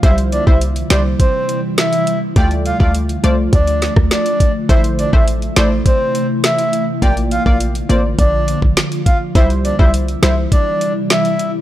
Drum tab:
HH |xxx-xxx-x-x-xxx-|xxx-xxx-xxx-xxx-|xxx-xxx-x-x-xxx-|xxx-xxx-x-x-xxx-|
SD |------o-----o---|----------oro---|------o-----o---|------------o---|
BD |o--o----o-------|o--o----o--o--o-|o--o----o-------|o--o----o--o--o-|

HH |xxx-xxx-x-x-xxx-|
SD |------o-----o---|
BD |o--o----o-------|